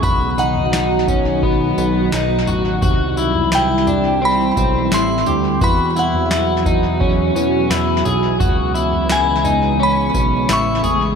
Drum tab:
TB |x-x-x-x---x-x-x-|x-x-x-x---x-x-x-|x-x-x-x---x-x-x-|x-x-x-x---x-x-x-|
SD |----o-------o---|----o-------o---|----o-------o---|----o-------o---|
FT |o--o--o-------o-|o--o--o-------o-|o--o--o-o-----o-|o--o--o-------o-|
BD |o-----o-o-------|o---------o-----|o-----o-o-------|o---------o-----|